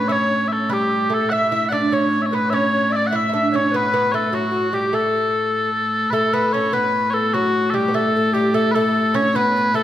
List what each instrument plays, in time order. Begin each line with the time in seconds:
Already playing: viola da gamba A2, recorder B4
0.08 lute C#4, recorder C#5, bagpipes E5
0.12 bagpipes C#5
0.48 bagpipes E5
0.52 bagpipes A4
0.69 lute G3, recorder G4, bagpipes B4
0.74 bagpipes G4
1.10 lute A3, recorder A4
1.14 bagpipes A4
1.30 viola da gamba A2, lute E4, recorder E5, bagpipes E5 F#5
1.50 lute E4, recorder E5
1.69 lute D4, recorder D5, bagpipes F#5
1.73 bagpipes D5
1.91 lute C#4, recorder C#5, bagpipes C#5
2.09 recorder C#5
2.22 bagpipes E5
2.26 bagpipes C#5
2.31 lute B3, recorder B4, bagpipes B4
2.50 lute C#4, recorder C#5, bagpipes E5
2.54 bagpipes C#5
2.90 recorder D5, bagpipes E5
2.96 bagpipes D5
3.07 recorder E5, bagpipes F#5
3.13 lute E4, bagpipes E5
3.29 lute E4
3.33 lute D4
3.51 lute C#4, recorder C#5
3.56 bagpipes C#5
3.72 lute B3, recorder B4
3.76 bagpipes B4
3.94 lute B3
4.12 lute A3, bagpipes A4 C#5
4.32 lute F#3, recorder F#4, bagpipes F#4
4.50 recorder F#4
4.72 lute G3, recorder G4, bagpipes G4
4.93 lute A3, recorder A4, bagpipes A4
6.10 lute A3, recorder A4, bagpipes A4 B4
6.15 viola da gamba A2
6.33 lute B3, bagpipes B4
6.53 lute C#4, bagpipes C#5
6.73 lute B3, bagpipes B4, recorder B4
7.10 recorder A4, bagpipes A4 C#5
7.34 lute F#3, bagpipes F#4, recorder F#4
7.70 lute G3, bagpipes A4
7.75 recorder G4, bagpipes G4
7.88 lute B3
7.93 lute A3, recorder A4, bagpipes A4
8.15 recorder A4
8.33 lute G3, recorder G4, bagpipes G4
8.53 lute A3, recorder A4, bagpipes A4
8.71 bagpipes A4 B4, recorder A4
8.75 lute A3
9.14 lute C#4, bagpipes C#5, recorder C#5
9.35 lute B3, recorder B4, bagpipes B4
9.56 recorder B4
9.74 lute A3, recorder A4, bagpipes A4